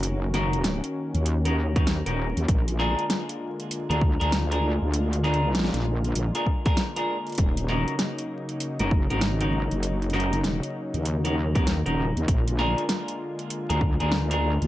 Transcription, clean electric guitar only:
X:1
M:4/4
L:1/16
Q:"Swing 16ths" 1/4=98
K:Bbphr
V:1 name="Clean electric guitar"
z2 [DEGB] z6 [DEGB] z [DEGB] z [DEGB] z2 | z2 [=DFAB] z6 [DFAB] z [DFAB] z [DFAB] z2 | z2 [=DFAB] z6 [DFAB] z [DFAB] z [DFAB] z2 | z2 [DEGB] z6 [DEGB] z [DEGB] z [DEGB] z2 |
z2 [DEGB] z6 [DEGB] z [DEGB] z [DEGB] z2 | z2 [=DFAB] z6 [DFAB] z [DFAB] z [DFAB] z2 |]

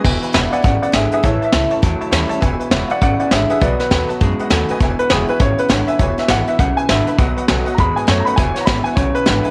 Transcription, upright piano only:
X:1
M:4/4
L:1/8
Q:"Swing" 1/4=202
K:E
V:1 name="Upright piano"
z3 [=d=f^f] [df] [df] [Ge] [Ge] | [ce] e2 z4 z | z3 [=d=f^f] [df] [df] [Ge] [Ge] | [B=d] B2 z4 z |
z B G B c B c e | c e f e f g e2 | z4 [^ab] g c [ab] | g c [^ab] g c B3 |]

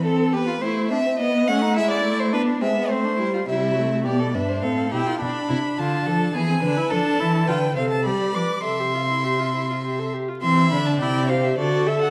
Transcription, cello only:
X:1
M:3/4
L:1/8
Q:1/4=104
K:Am
V:1 name="Cello" clef=bass
z6 | z6 | C,2 B,, G,, A,, B,, | B,, C, D, F, E, D, |
[K:C] F, E, D, C, G, F, | C,4- C, z | E, D, C,2 D,2 |]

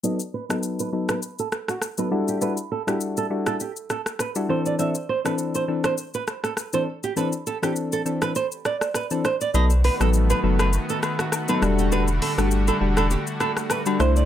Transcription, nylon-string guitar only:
X:1
M:4/4
L:1/16
Q:"Swing 16ths" 1/4=101
K:Em
V:1 name="Nylon-string guitar"
^d z B A z B z B z A z F z B z G | B z A G z A z A G z A z B z c d | e z c B z c z c z B z A z c z G | B z A G z A z B c z d z B z c d |
^d z B A z B z B z A z F z B z G | B z A G z A z A G z A z B z c d |]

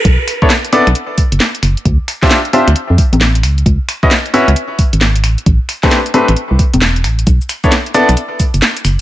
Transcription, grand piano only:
X:1
M:4/4
L:1/16
Q:"Swing 16ths" 1/4=133
K:A
V:1 name="Grand piano"
z3 [B,DEAc] z2 [B,DEAd] z8 z | z3 [D=F=G=ce] z2 [DFGce] z8 z | z3 [CEFB^d] z2 [CEFBe] z8 z | z3 [A,=CD=GB] z2 [A,CDGB] z8 z |
z3 [B,DEAc] z2 [B,DEAd] z8 z |]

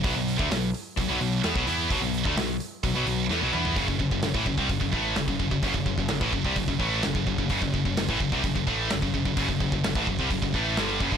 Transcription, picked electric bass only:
X:1
M:4/4
L:1/16
Q:1/4=129
K:F#m
V:1 name="Picked electric bass" clef=bass
B,,, B,,,2 D,, B,,,2 z2 B,,, B,,, B,,,2 E,, B,,, E,,2 | B,,, B,,,2 D,, B,,,2 z2 B,,, B,,, B,,,2 E,, B,,, E,,2 | F,,, F,,, F,,, F,,, F,,, A,,, F,,, ^B,,, F,,, F,,, A,,,2 F,,, F,,, F,,, F,,, | F,,, F,,, F,,, F,,, F,,, A,,, F,,, ^B,,, F,,, F,,, A,,,2 F,,, F,,, F,,, F,,, |
F,,, F,,, F,,, F,,, F,,, A,,, F,,, ^B,,, F,,, F,,, A,,,2 F,,, F,,, F,,, F,,, | F,,, F,,, F,,, F,,, F,,, A,,, F,,, ^B,,, F,,, F,,, A,,,2 =G,,,2 F,,, G,,, |]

